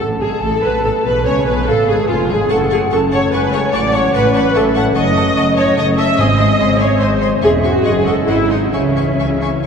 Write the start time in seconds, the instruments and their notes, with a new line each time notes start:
0.00 double bass section A1, cello section A2, flute A5
0.19 double bass section G#1, cello section G#2, french horn section G#3, viola section G#4, violin section G#4
0.41 double bass section A1, cello section A2, french horn section A3, violin section A4, viola section A4
0.63 double bass section B1, cello section B2, french horn section B3, violin section B4, viola section B4
0.84 double bass section A1, cello section A2, french horn section A3, viola section A4, violin section A4
1.05 double bass section B1, cello section B2, french horn section B3, viola section B4, violin section B4
1.25 double bass section C#2, cello section C#3, french horn section C#4, violin section C#5, viola section C#5, flute G#5
1.46 double bass section B1, cello section B2, french horn section B3, violin section B4, viola section B4
1.67 double bass section A1, cello section A2, french horn section A3, violin section A4, viola section A4, flute F5
1.87 double bass section G#1, cello section G#2, french horn section G#3, violin section G#4, viola section G#4
2.08 double bass section F1, cello section F2, french horn section F3, violin section F4, viola section F4, flute G#5
2.29 double bass section G#1, cello section G#2, french horn section G#3, violin section G#4, viola section G#4
2.50 double bass section F#1, cello section F#2, french horn section A3 C#4, viola section A4, violin section F#5 A5 C#6, flute F#5
2.71 viola section G#4, violin section F#5 A5 C#6
2.91 double bass section F#1, cello section F#2, french horn section A3 C#4, viola section A4, violin section F#5 A5 C#6, flute A5
3.12 viola section C#5, violin section F#5 A5 C#6
3.32 double bass section F#1, cello section F#2, french horn section G#3, viola section B4, violin section F#5 A5 C#6, flute G#5
3.53 viola section C#5, violin section F#5 A5 C#6
3.73 double bass section A1, cello section A2, french horn section F#3 C#4, viola section D5, violin section F#5 A5 C#6, flute F#5
3.93 viola section C#5, violin section F#5 A5 C#6
4.14 double bass section A1, cello section A2, viola section B4, violin section F#5 A5 C#6
4.34 viola section B4, violin section F#5 A5 C#6
4.55 double bass section A1, cello section A2, french horn section F#3 C#4, viola section A4, flute E5, violin section F#5 A5 C#6
4.75 french horn section G#3, violin section F#5 A5 C#6, viola section F#5
4.95 double bass section F#1, cello section F#2, french horn section A3 C#4, violin section D#5 A5 C#6, flute D#5, viola section D#5
5.15 violin section D#5 A5 C#6
5.36 double bass section F#1, cello section F#2, violin section D#5 A5 C#6
5.57 viola section C#5, violin section D#5 A5 C#6
5.77 double bass section F#1, cello section F#2, french horn section A3 C#4, violin section D#5 A5 C#6, viola section D#5
5.97 violin section D#5 A5 C#6, viola section E5
6.18 double bass section G#1, timpani G#2, cello section G#2, french horn section G#3 C4, flute C5, viola section D#5, violin section D#5 G#5 C6
6.38 violin section D#5 G#5 C6
6.60 double bass section G#1, cello section G#2, flute C5, violin section D#5 G#5 C6
6.80 viola section C#5, violin section D#5 G#5 C6
7.00 double bass section G#1, cello section G#2, french horn section G#3 C4, viola section C5, flute D#5, violin section D#5 G#5 C6
7.21 violin section D#5 G#5 C6
7.42 double bass section E1, cello section E2, french horn section G#3 C#4, viola section G#4, violin section E5 G#5 C#6, flute E5
7.63 viola section F#4, violin section E5 G#5 C#6
7.84 double bass section F#1, cello section F#2, french horn section D#3 C#4, viola section G#4, violin section D#5 F#5 C#6, flute D#5
8.06 french horn section E3, viola section A4, violin section D#5 F#5 C#6
8.28 double bass section G#1, cello section G#2, french horn section F#3 C4, viola section E4, violin section D#5 F#5 C6
8.50 viola section D#4, violin section D#5 F#5 C6
8.73 double bass section C#2, cello section C#3, french horn section E3 C#4, viola section C#4, violin section E5 G#5 C#6, flute E5
8.96 violin section E5 G#5 C#6
9.18 double bass section C#2, cello section C#3, violin section E5 G#5 C#6
9.42 violin section E5 G#5 C#6